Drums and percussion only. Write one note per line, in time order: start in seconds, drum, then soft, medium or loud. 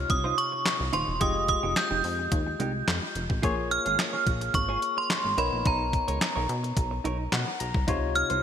0.10 kick loud
0.10 closed hi-hat medium
0.38 closed hi-hat medium
0.66 snare loud
0.66 clap medium
0.66 closed hi-hat medium
0.93 closed hi-hat medium
1.21 kick loud
1.21 closed hi-hat medium
1.48 kick medium
1.48 closed hi-hat medium
1.76 snare loud
1.76 clap loud
1.76 closed hi-hat medium
2.04 open hi-hat medium
2.32 kick loud
2.32 closed hi-hat medium
2.60 closed hi-hat medium
2.88 snare loud
2.88 clap medium
2.88 closed hi-hat medium
3.15 closed hi-hat medium
3.30 kick loud
3.43 kick loud
3.43 closed hi-hat medium
3.71 closed hi-hat medium
3.86 closed hi-hat medium
3.99 snare loud
3.99 clap loud
3.99 closed hi-hat medium
4.27 kick loud
4.27 closed hi-hat medium
4.41 closed hi-hat medium
4.54 kick loud
4.54 closed hi-hat medium
4.82 closed hi-hat medium
5.10 snare loud
5.10 clap medium
5.10 closed hi-hat medium
5.38 closed hi-hat medium
5.65 kick loud
5.65 closed hi-hat medium
5.93 kick medium
5.93 closed hi-hat medium
6.08 closed hi-hat medium
6.21 snare loud
6.21 clap loud
6.21 closed hi-hat medium
6.49 closed hi-hat medium
6.64 closed hi-hat medium
6.77 kick loud
6.77 closed hi-hat medium
7.05 closed hi-hat medium
7.32 snare loud
7.32 clap medium
7.32 closed hi-hat medium
7.60 closed hi-hat medium
7.74 kick loud
7.88 kick loud
7.88 closed hi-hat medium
8.15 closed hi-hat medium
8.30 closed hi-hat medium